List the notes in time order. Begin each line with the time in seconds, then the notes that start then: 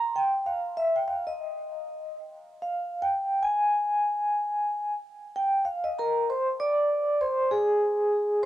Already playing: A#5
0.16 G5
0.46 F5
0.77 E5
0.96 G5
1.08 F5
1.27 D#5
2.62 F5
3.02 G5
3.43 G#5
5.36 G5
5.65 F5
5.84 D#5
5.99 A#4 A#5
6.30 C5 C6
6.60 D5 D6
7.21 C5 C6
7.51 G#4 G#5